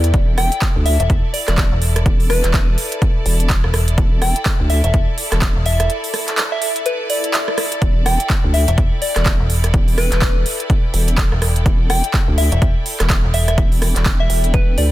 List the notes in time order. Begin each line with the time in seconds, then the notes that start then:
Already playing: E2 E4 A4 D5 G5
0.04 closed hi-hat
0.14 E1, kick, closed hi-hat
0.38 G5, cross-stick, open hi-hat
0.52 closed hi-hat
0.62 A5, kick, clap, closed hi-hat
0.76 D2
0.86 E5, open hi-hat
1.00 E1 E5, closed hi-hat
1.10 kick, closed hi-hat
1.33 D5, open hi-hat
1.48 E1, cross-stick, clap, closed hi-hat
1.58 kick, clap, closed hi-hat
1.72 E1
1.82 open hi-hat
1.96 cross-stick, closed hi-hat
2.06 E1, kick, closed hi-hat
2.20 open hi-hat
2.30 B4, cross-stick, open hi-hat
2.44 E1, clap, closed hi-hat
2.54 kick, clap, closed hi-hat
2.78 open hi-hat
2.92 closed hi-hat
3.02 kick, closed hi-hat
3.26 E1, open hi-hat
3.40 closed hi-hat
3.50 kick, clap, closed hi-hat
3.64 E1, cross-stick
3.74 cross-stick, open hi-hat
3.88 closed hi-hat
3.98 E1, kick, closed hi-hat
4.22 G5, cross-stick, open hi-hat
4.36 closed hi-hat
4.46 kick, clap, closed hi-hat
4.60 D2
4.70 E5, open hi-hat
4.84 E1 E5, closed hi-hat
4.94 kick, closed hi-hat
5.18 open hi-hat
5.32 E1, cross-stick, clap, closed hi-hat
5.42 kick, clap, closed hi-hat
5.56 E1
5.66 E5, open hi-hat
5.80 E5, cross-stick, closed hi-hat
5.90 closed hi-hat
6.04 open hi-hat
6.14 cross-stick, open hi-hat
6.28 clap, closed hi-hat
6.38 clap, closed hi-hat
6.52 E5
6.62 open hi-hat
6.76 closed hi-hat
6.86 B4, closed hi-hat, swell
7.10 D5, open hi-hat
7.24 closed hi-hat
7.34 clap, closed hi-hat
7.48 cross-stick
7.58 cross-stick, open hi-hat
7.72 closed hi-hat
7.82 E1, kick, closed hi-hat
8.06 G5, cross-stick, open hi-hat
8.20 closed hi-hat
8.30 G5, kick, clap, closed hi-hat
8.44 D2
8.54 E5, open hi-hat
8.68 E1 E5, closed hi-hat
8.78 kick, closed hi-hat
9.02 D5, open hi-hat
9.16 E1, cross-stick, clap, closed hi-hat
9.26 kick, clap, closed hi-hat
9.40 E1
9.50 open hi-hat
9.64 cross-stick, closed hi-hat
9.74 E1, kick, closed hi-hat
9.88 open hi-hat
9.98 B4, cross-stick, open hi-hat
10.12 E1, clap, closed hi-hat
10.22 kick, clap, closed hi-hat
10.46 open hi-hat
10.60 closed hi-hat
10.70 kick, closed hi-hat
10.94 E1, open hi-hat
11.08 closed hi-hat
11.18 kick, clap, closed hi-hat
11.32 E1, cross-stick
11.42 cross-stick, open hi-hat
11.56 closed hi-hat
11.66 E1, kick, closed hi-hat
11.90 G5, cross-stick, open hi-hat
12.04 closed hi-hat
12.14 kick, clap, closed hi-hat
12.28 D2
12.38 E5, open hi-hat
12.52 E1 E5, closed hi-hat
12.62 kick, closed hi-hat
12.86 open hi-hat
13.00 E1, cross-stick, clap, closed hi-hat
13.10 kick, clap, closed hi-hat
13.24 E1
13.34 E5, open hi-hat
13.48 E5, cross-stick, closed hi-hat
13.58 E1, kick, closed hi-hat
13.72 open hi-hat
13.82 cross-stick, open hi-hat
13.96 E1, clap, closed hi-hat
14.06 kick, clap, closed hi-hat
14.20 E5
14.30 E1, open hi-hat
14.44 closed hi-hat
14.54 B4, kick, closed hi-hat
14.78 D2 D5, open hi-hat